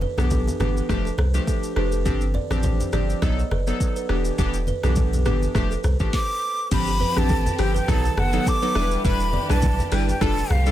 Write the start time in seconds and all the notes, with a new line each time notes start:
0.01 B4, high conga
0.18 B1 E3 B3 D4 G4 A4, cross-stick, high conga, shaker
0.30 A4, kick, low conga, shaker
0.47 high conga, shaker
0.60 G1 E3 B3 D4 G4 B4, cross-stick, low conga, shaker
0.77 shaker
0.89 F1 F3 A3 D4 G4, kick, cross-stick, low conga, shaker
1.05 A4, shaker
1.18 C2 C5, cross-stick, high conga
1.34 F3 A3 D4 G4, shaker
1.47 A4, kick, shaker
1.63 shaker
1.76 F1 F3 A3 D4 G4 B4, cross-stick
1.92 A4, shaker
2.05 G1 F3 C4 D4 G4, kick, low conga, shaker
2.21 shaker
2.34 D5, high conga
2.50 A1 F3 C4 D4 G4 C5, cross-stick, high conga, shaker
2.63 C5, kick, low conga, shaker
2.80 high conga, shaker
2.92 G1 F3 C4 D4 G4 D5, cross-stick, low conga, shaker
3.10 shaker
3.22 B1 F#3 B3 D#4 A4 D#5, kick, cross-stick, low conga, shaker
3.39 shaker
3.51 F#1 B4, cross-stick, high conga
3.67 F#3 B3 D#4 A4, shaker
3.80 kick, shaker
3.96 B4, shaker
4.09 E1 E3 B3 D4 G4 A4, cross-stick
4.25 shaker
4.38 E1 E3 B3 D4 G4, kick, low conga, shaker
4.54 shaker
4.67 B4, high conga, shaker
4.83 B1 E3 B3 D4 G4 A4, cross-stick, high conga, shaker
4.96 A4, kick, low conga, shaker
5.13 high conga, shaker
5.25 G1 E3 B3 D4 G4 B4, cross-stick, low conga, shaker
5.42 high conga, shaker
5.55 F1 F3 A3 D4 G4, kick, cross-stick, low conga, shaker
5.71 A4, shaker
5.84 C2 C5, cross-stick, high conga, shaker
6.00 A1 F3 A3 D4 G4, kick, shaker
6.13 D6, kick, snare
6.71 G1 F3 C4 D4 G4 B5, kick, crash, low conga, shaker
6.87 G4, shaker
7.00 B4, high conga
7.16 A1 F3 C4 D4 G4 A5, cross-stick, high conga, shaker
7.29 A4, kick, low conga, shaker
7.46 high conga, shaker
7.59 G1 F3 C4 D4 G4 G5, cross-stick, open hi-hat, shaker
7.75 B4 G5, high conga, shaker
7.88 B1 D#3 F#3 B3 D#4 A4 A5, kick, cross-stick, low conga, shaker
8.04 A4, shaker
8.17 F#1 F#5, cross-stick, high conga
8.33 F#3 B3 D#4 A4, shaker
8.46 D6, kick, shaker
8.62 F#3 B3 D#4 A4 B4, shaker
8.75 E1 E3 G3 D4 E4 G4 B4 E5, cross-stick
8.91 shaker
9.05 E1 G3 D4 E4 B4 B5, kick, low conga, shaker
9.20 shaker
9.33 D5, high conga
9.49 B1 G3 D4 E4 B4 A5, cross-stick, high conga, shaker
9.62 kick, low conga, shaker
9.79 high conga, shaker
9.92 G1 G3 D4 E4 G4 B4 G5, cross-stick, open hi-hat, shaker
10.08 G5, high conga, shaker
10.21 F1 D3 G3 A3 D4 F4 G4 A4 A5, kick, cross-stick, low conga, shaker
10.38 shaker
10.50 C2 F5, cross-stick, high conga
10.66 G3 D4 F4 A4, shaker